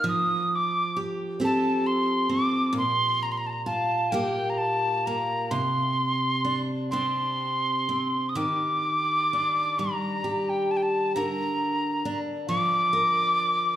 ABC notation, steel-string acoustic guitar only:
X:1
M:6/8
L:1/8
Q:3/8=44
K:Eblyd
V:1 name="Steel-string acoustic guitar"
F,2 G [CGA]2 C | B,,2 F [B,FG]2 B, | C,2 D [CDG]2 C | [E,G]2 D G, G2 |
[D,B]2 D F, B2 |]